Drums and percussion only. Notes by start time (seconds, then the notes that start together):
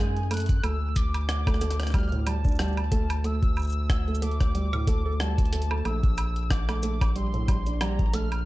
0.17 closed hi-hat
0.31 closed hi-hat, high woodblock
0.34 closed hi-hat
0.37 closed hi-hat
0.40 closed hi-hat
0.42 closed hi-hat
0.46 kick, closed hi-hat
0.49 closed hi-hat
0.64 closed hi-hat, high woodblock
0.96 kick, closed hi-hat, shaker
1.14 closed hi-hat, high woodblock
1.29 cross-stick, closed hi-hat
1.47 kick, cross-stick, closed hi-hat, high woodblock
1.54 cross-stick
1.61 cross-stick, closed hi-hat, shaker
1.71 cross-stick, closed hi-hat
1.80 cross-stick, closed hi-hat
1.83 cross-stick
1.87 cross-stick, closed hi-hat
1.90 kick, cross-stick
1.94 cross-stick, closed hi-hat, high woodblock
1.99 cross-stick
2.03 cross-stick
2.08 cross-stick
2.12 closed hi-hat
2.27 closed hi-hat, high woodblock
2.45 kick, shaker
2.48 shaker
2.52 shaker
2.56 cross-stick, closed hi-hat, shaker
2.59 shaker
2.64 shaker
2.68 shaker
2.73 shaker
2.77 closed hi-hat, high woodblock
2.92 kick, closed hi-hat
3.10 closed hi-hat, high woodblock
3.24 closed hi-hat
3.43 kick, closed hi-hat
3.57 high woodblock, shaker
3.60 shaker
3.62 shaker
3.65 shaker
3.67 shaker
3.70 shaker
3.73 shaker
3.90 kick, cross-stick, closed hi-hat
4.08 closed hi-hat
4.15 closed hi-hat, shaker
4.22 closed hi-hat
4.31 closed hi-hat
4.40 kick, cross-stick, closed hi-hat
4.55 closed hi-hat
4.73 closed hi-hat, high woodblock
4.87 kick, closed hi-hat
5.20 cross-stick
5.38 kick, closed hi-hat
5.45 closed hi-hat
5.53 closed hi-hat
5.62 closed hi-hat
5.71 high woodblock
5.85 closed hi-hat, high woodblock
6.03 kick, closed hi-hat
6.18 closed hi-hat, high woodblock, shaker
6.36 closed hi-hat
6.50 kick, cross-stick, closed hi-hat
6.69 cross-stick, closed hi-hat, high woodblock
6.83 closed hi-hat, shaker
7.01 kick, cross-stick, closed hi-hat, high woodblock
7.16 closed hi-hat
7.34 closed hi-hat
7.48 kick, closed hi-hat, high woodblock
7.67 closed hi-hat, shaker
7.81 cross-stick, closed hi-hat, high woodblock
7.99 kick, closed hi-hat
8.13 closed hi-hat
8.32 closed hi-hat, high woodblock